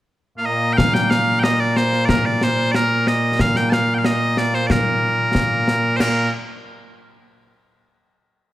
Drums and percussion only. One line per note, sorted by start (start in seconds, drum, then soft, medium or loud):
0.78 concert bass drum medium
0.78 snare loud
0.95 snare medium
1.11 snare medium
1.44 snare loud
1.77 snare medium
1.93 snare soft
2.09 concert bass drum medium
2.09 snare loud
2.41 snare medium
2.75 snare medium
3.07 snare medium
3.39 concert bass drum medium
3.39 snare medium
3.56 snare medium
3.72 snare medium
4.04 snare medium
4.37 snare medium
4.54 snare soft
4.70 concert bass drum medium
4.70 snare loud
5.35 concert bass drum soft
5.35 snare medium
5.68 snare medium
6.00 snare loud
6.00 crash medium